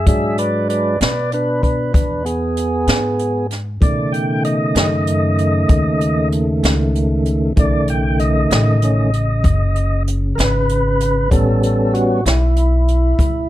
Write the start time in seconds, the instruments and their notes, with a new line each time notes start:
0.06 upright bass G#2, tonewheel organ F#3 G#3 D4 G#4 E5, kick, closed hi-hat
0.38 tonewheel organ B4 D5, closed hi-hat
0.69 tonewheel organ B4 D5, closed hi-hat
1.01 upright bass B2, tonewheel organ B4 D5, snare, closed hi-hat
1.32 tonewheel organ D4 B4, closed hi-hat
1.63 tonewheel organ D4 B4, kick, closed hi-hat
1.93 upright bass E2, tonewheel organ D4 B4, kick, closed hi-hat
2.25 tonewheel organ B3 G#4, closed hi-hat
2.57 closed hi-hat
2.87 upright bass G#2, snare, closed hi-hat
3.19 closed hi-hat
3.51 snare, closed hi-hat
3.81 upright bass B2, tonewheel organ C#3 D#3 A3 D5, kick, closed hi-hat
4.12 tonewheel organ G5, closed hi-hat
4.44 tonewheel organ D#5, closed hi-hat
4.75 upright bass F#2, snare, closed hi-hat
5.07 closed hi-hat
5.38 closed hi-hat
5.69 upright bass D#2, kick, closed hi-hat
6.01 closed hi-hat
6.32 closed hi-hat
6.63 upright bass C#2, snare, closed hi-hat
6.95 closed hi-hat
7.25 closed hi-hat
7.56 upright bass B1, tonewheel organ C#3 D#3 A3 D5, kick, closed hi-hat
7.88 tonewheel organ G5, closed hi-hat
8.19 tonewheel organ D#5, closed hi-hat
8.51 upright bass A1, snare, closed hi-hat
8.82 tonewheel organ D#3 A3 C#4, closed hi-hat
9.13 closed hi-hat
9.44 upright bass F#1, kick, closed hi-hat
9.76 closed hi-hat
10.07 closed hi-hat
10.35 upright bass G#1, tonewheel organ A#4, closed hi-hat
10.40 tonewheel organ B4, snare
10.69 closed hi-hat
11.00 closed hi-hat
11.31 upright bass A1, tonewheel organ G3 B3 C#4 A4, kick, closed hi-hat
11.63 tonewheel organ A4, closed hi-hat
11.94 tonewheel organ F#4, closed hi-hat
12.26 upright bass B1, tonewheel organ E4, snare, closed hi-hat
12.56 closed hi-hat
12.88 closed hi-hat
13.19 upright bass C#2, kick, closed hi-hat